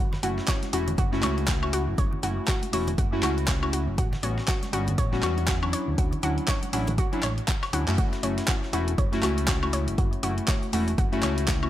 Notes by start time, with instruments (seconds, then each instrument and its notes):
0.00 fingered electric bass F#1
0.13 snare, low conga
0.23 fingered electric bass F#1, synth keys A3 C#4 E4 F#4, synth arpeggio sound F#4, closed hi-hat, open hi-hat, high bongo
0.38 snare
0.48 synth arpeggio sound C#5, kick, snare, clap, closed hi-hat
0.63 snare, closed hi-hat, high conga
0.73 fingered electric bass E1, synth keys A3 C#4 E4 F#4, synth arpeggio sound F#4, closed hi-hat, open hi-hat
0.88 closed hi-hat, high bongo, high conga, low conga
0.98 fingered electric bass F#1, synth arpeggio sound F#4, kick, closed hi-hat
1.12 synth keys A3 C#4 E4 F#4, snare
1.23 fingered electric bass C#2, synth keys A3 C#4 E4 F#4, synth arpeggio sound C#5, clap, closed hi-hat, open hi-hat, high bongo, high conga, high woodblock
1.38 closed hi-hat, high bongo
1.48 synth arpeggio sound F#4, kick, snare, clap, closed hi-hat
1.62 synth keys A3 C#4 E4 F#4, high woodblock
1.73 synth arpeggio sound F#4, closed hi-hat, open hi-hat
1.88 fingered electric bass F#1
1.98 fingered electric bass F#1, synth arpeggio sound C#5, kick, closed hi-hat
2.13 low conga
2.23 fingered electric bass F#1, synth keys A3 C#4 E4 F#4, synth arpeggio sound F#4, closed hi-hat, open hi-hat, high bongo
2.48 synth arpeggio sound F#4, kick, snare, clap, closed hi-hat
2.62 closed hi-hat, high conga
2.73 fingered electric bass E1, synth keys A3 C#4 E4 F#4, synth arpeggio sound C#5, open hi-hat
2.87 closed hi-hat, high bongo, high conga, low conga
2.98 fingered electric bass F#1, synth arpeggio sound F#4, kick, closed hi-hat
3.12 synth keys A3 C#4 E4 F#4
3.23 fingered electric bass C#2, synth keys A3 C#4 E4 F#4, synth arpeggio sound F#4, clap, closed hi-hat, open hi-hat, high conga, high woodblock
3.38 closed hi-hat
3.48 synth arpeggio sound C#5, kick, snare, clap, closed hi-hat
3.62 synth keys A3 C#4 E4 F#4, high woodblock
3.73 synth arpeggio sound F#4, closed hi-hat, open hi-hat
3.88 fingered electric bass F#1
3.98 fingered electric bass A1, synth arpeggio sound F#4, kick, closed hi-hat
4.13 snare, low conga
4.23 fingered electric bass A1, synth keys G3 B3 C#4 F#4, synth arpeggio sound C#5, closed hi-hat, open hi-hat, high bongo
4.38 snare
4.48 synth arpeggio sound F#4, kick, snare, clap, closed hi-hat
4.63 snare, closed hi-hat, high conga
4.73 fingered electric bass G1, synth keys G3 B3 C#4 F#4, synth arpeggio sound F#4, closed hi-hat, open hi-hat
4.87 closed hi-hat, high bongo, high conga, low conga
4.98 fingered electric bass A1, synth arpeggio sound C#5, kick, closed hi-hat
5.12 synth keys G3 B3 C#4 F#4, snare
5.23 fingered electric bass E2, synth keys G3 B3 C#4 F#4, synth arpeggio sound F#4, clap, closed hi-hat, open hi-hat, high bongo, high conga, high woodblock
5.38 closed hi-hat, high bongo
5.48 synth arpeggio sound F#4, kick, snare, clap, closed hi-hat
5.62 synth keys F#3 C#4 D4 E4, high woodblock
5.73 synth arpeggio sound C#5, closed hi-hat, open hi-hat
5.88 fingered electric bass D2
5.98 fingered electric bass D2, synth arpeggio sound F#4, kick, closed hi-hat
6.13 closed hi-hat, low conga
6.23 fingered electric bass D2, synth keys F#3 C#4 D4 E4, synth arpeggio sound F#4, closed hi-hat, open hi-hat, high bongo
6.38 closed hi-hat
6.48 synth arpeggio sound C#5, kick, snare, clap, closed hi-hat
6.62 closed hi-hat, high conga
6.73 fingered electric bass A1, synth keys F#3 C#4 D4 E4, synth arpeggio sound F#4, open hi-hat
6.87 closed hi-hat, high bongo, high conga, low conga
6.98 synth arpeggio sound F#4, kick, closed hi-hat
7.12 synth keys F#3 C#4 D4 E4, closed hi-hat
7.23 fingered electric bass A1, synth arpeggio sound C#5, clap, closed hi-hat, open hi-hat, high conga, high woodblock
7.38 closed hi-hat
7.48 synth arpeggio sound F#4, kick, clap, closed hi-hat
7.63 snare, closed hi-hat, high woodblock
7.73 fingered electric bass D2, synth keys F#3 C#4 D4 E4, synth arpeggio sound F#4, closed hi-hat, open hi-hat
7.87 fingered electric bass F#2, synth keys A3 C#4 E4 F#4, clap, closed hi-hat, high bongo
7.98 fingered electric bass F#1, synth arpeggio sound F#4, kick, closed hi-hat
8.13 snare, closed hi-hat
8.23 fingered electric bass F#1, synth keys A3 C#4 E4 F#4, synth arpeggio sound C#5, closed hi-hat, open hi-hat
8.38 snare, closed hi-hat
8.48 synth arpeggio sound F#4, kick, snare, clap, closed hi-hat
8.63 snare
8.73 fingered electric bass E1, synth keys A3 C#4 E4 F#4, synth arpeggio sound F#4, closed hi-hat, open hi-hat
8.88 closed hi-hat
8.98 fingered electric bass F#1, synth arpeggio sound C#5, kick, closed hi-hat
9.12 synth keys A3 C#4 E4 F#4, snare, closed hi-hat
9.23 fingered electric bass C#2, synth keys A3 C#4 E4 F#4, synth arpeggio sound F#4, clap, closed hi-hat, open hi-hat, high woodblock
9.38 closed hi-hat
9.48 synth arpeggio sound F#4, kick, snare, clap, closed hi-hat
9.62 synth keys A3 C#4 E4 F#4, high woodblock
9.73 synth arpeggio sound C#5, closed hi-hat, open hi-hat
9.88 fingered electric bass F#1, closed hi-hat
9.98 fingered electric bass F#1, synth arpeggio sound F#4, kick, closed hi-hat
10.13 closed hi-hat
10.23 fingered electric bass F#1, synth keys A3 C#4 E4 F#4, synth arpeggio sound F#4, closed hi-hat, open hi-hat
10.38 closed hi-hat
10.48 synth arpeggio sound C#5, kick, snare, clap, closed hi-hat
10.63 closed hi-hat
10.73 fingered electric bass E1, synth keys A3 C#4 E4 F#4, synth arpeggio sound F#4, open hi-hat
10.88 closed hi-hat
10.98 fingered electric bass F#1, synth arpeggio sound F#4, kick, closed hi-hat
11.12 synth keys A3 C#4 E4 F#4, closed hi-hat
11.23 fingered electric bass C#2, synth keys A3 C#4 E4 F#4, synth arpeggio sound C#5, clap, closed hi-hat, open hi-hat, high woodblock
11.38 closed hi-hat
11.48 synth arpeggio sound F#4, kick, snare, clap, closed hi-hat
11.62 synth keys A3 C#4 E4 F#4, high woodblock